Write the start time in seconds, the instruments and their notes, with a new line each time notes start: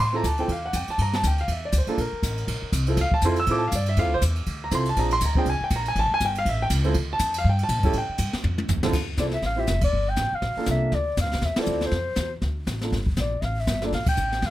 0.00 upright bass A2, grand piano C6
0.13 grand piano C4 E4 F4 A4 A#5
0.24 upright bass D2, grand piano A5, kick, hi-hat pedal, ride
0.38 grand piano C4 E4 F4 A4 G5, ride
0.48 upright bass E2, grand piano F5, kick, ride
0.66 grand piano F#5
0.73 upright bass F2, grand piano G5, kick, hi-hat pedal, ride
0.88 grand piano A5, muted upright bass stroke, ride
0.98 upright bass G2, grand piano A#5, kick, ride
1.13 grand piano A5, snare
1.23 upright bass D2, grand piano G5, kick, hi-hat pedal, ride
1.38 grand piano F5, ride
1.48 upright bass E2, kick, ride
1.52 grand piano E5
1.65 grand piano D5
1.72 upright bass D2, kick, hi-hat pedal, ride
1.78 grand piano C5
1.87 grand piano A#3 D4 F4 A4, muted upright bass stroke, ride
1.98 upright bass A#1, grand piano A#4, kick, ride
2.13 muted upright bass stroke
2.23 upright bass A1, kick, hi-hat pedal, ride
2.37 ride
2.47 upright bass A#1, kick, ride
2.62 muted upright bass stroke
2.72 upright bass C2, kick, hi-hat pedal, ride
2.87 grand piano C4 E4 F4 A4, ride
2.97 upright bass D2, kick, snare, ride
3.01 grand piano F5
3.12 grand piano A5, muted upright bass stroke, kick
3.21 upright bass F2, grand piano C4 E4, kick, hi-hat pedal, ride
3.26 grand piano F4 A4 C6
3.36 grand piano E6, ride
3.46 upright bass A2, grand piano C4 E4, kick, ride
3.51 grand piano F4 A4 D6
3.58 grand piano A5
3.68 grand piano F5, hi-hat pedal, ride
3.72 upright bass G2, grand piano D5, kick
3.86 grand piano E5, ride
3.96 upright bass F2, grand piano C4 E4 F4 A4 F5, kick, ride
4.06 upright bass D2
4.14 upright bass C2, grand piano C5
4.21 upright bass E2, kick, hi-hat pedal, ride
4.35 ride
4.46 upright bass D2, kick, ride
4.64 grand piano A#5
4.71 upright bass C2, grand piano C4 E4 F4 A4 C6, kick, hi-hat pedal, ride
4.85 ride
4.89 grand piano A5
4.96 upright bass A#1, grand piano C4 D4 F4 G#4 A#5, kick, ride
5.11 grand piano C6, ride
5.21 upright bass D2, kick, hi-hat pedal, ride
5.25 grand piano A#5
5.35 grand piano C4 D4 F4 G#4 G5, kick
5.45 upright bass C2, kick, ride
5.50 grand piano G#5
5.61 grand piano G5, muted upright bass stroke
5.70 upright bass A#1, kick, hi-hat pedal, ride
5.76 grand piano A#5
5.85 grand piano G#5, ride
5.95 upright bass A1, grand piano A5, kick, ride
6.11 grand piano G#5, muted upright bass stroke
6.20 upright bass G1, kick, hi-hat pedal, ride
6.25 grand piano G5
6.35 grand piano F5, ride
6.45 upright bass A1, grand piano E5, kick, ride
6.62 grand piano G5
6.70 upright bass C#2, kick, hi-hat pedal, ride
6.84 grand piano C4 E4 F4 A4, ride
6.94 upright bass D2, kick, ride
7.13 grand piano A5
7.19 upright bass F2, kick, hi-hat pedal, ride
7.34 ride
7.38 grand piano F5
7.44 upright bass G2, kick
7.49 grand piano G5
7.58 ride
7.63 grand piano A5
7.69 upright bass A#2, kick, hi-hat pedal, ride
7.78 upright bass G2
7.83 upright bass F2, grand piano C#4 E4 G4 A4, kick, ride
7.93 upright bass A2, kick, ride
7.98 grand piano G5
8.09 muted upright bass stroke
8.18 upright bass G2, kick, hi-hat pedal, ride
8.33 muted upright bass stroke, snare
8.44 upright bass F2, high tom
8.58 high tom
8.68 upright bass E2, floor tom, hi-hat pedal
8.77 upright bass C#2
8.83 upright bass A1, grand piano D3 C4 E4 F4 A4, snare
8.93 upright bass D2, brush sweep, kick, snare, crash
9.17 upright bass C2, grand piano C4 E4 F4 A4, clarinet D5, kick, snare, hi-hat pedal
9.31 clarinet E5, snare
9.42 upright bass A1, clarinet F5, brush sweep, kick, snare
9.56 grand piano C4 E4 F4 G4, clarinet E5
9.67 upright bass F1, kick, snare, hi-hat pedal
9.81 clarinet D5, kick, ride
9.92 upright bass G1, brush sweep
10.10 clarinet G5
10.16 upright bass A1, kick, snare, hi-hat pedal
10.33 clarinet F5, muted upright bass stroke
10.42 upright bass A#1, brush sweep, kick, snare
10.57 grand piano A#3 D4 F4 A4, muted upright bass stroke
10.66 upright bass C2, kick, snare, hi-hat pedal
10.71 clarinet E5
10.92 upright bass D2, clarinet D5, brush sweep, kick, snare
11.17 upright bass F2, clarinet F5, kick, snare, hi-hat pedal
11.26 upright bass D2, snare
11.32 snare
11.33 upright bass C2, snare
11.41 upright bass E2, brush sweep, kick, snare
11.45 clarinet E5
11.56 grand piano C4 E4 F4 A4, muted upright bass stroke, snare, ride
11.61 clarinet D5
11.66 upright bass D2, hi-hat pedal
11.81 snare
11.86 clarinet C5
11.91 upright bass F2, brush sweep, kick, snare
12.16 upright bass E2, kick, snare, hi-hat pedal
12.42 upright bass D2, brush sweep, kick, snare
12.67 upright bass A1, kick, snare, hi-hat pedal
12.81 grand piano A#3 D4 F4 A4, snare
12.92 upright bass G1, brush sweep, kick, snare
13.06 kick
13.16 upright bass A#1, clarinet D5, kick, snare, hi-hat pedal
13.41 upright bass A1, clarinet E5 F5, brush sweep, kick, snare
13.60 clarinet E5
13.67 upright bass G1, kick, snare, hi-hat pedal
13.82 grand piano A#3 D4 F4 A4, clarinet D5, snare
13.92 upright bass A#1, clarinet F5, brush sweep, kick, snare
14.06 clarinet G5, kick, ride
14.17 upright bass A1, hi-hat pedal
14.32 snare
14.42 upright bass G1, clarinet F5, brush sweep, kick, snare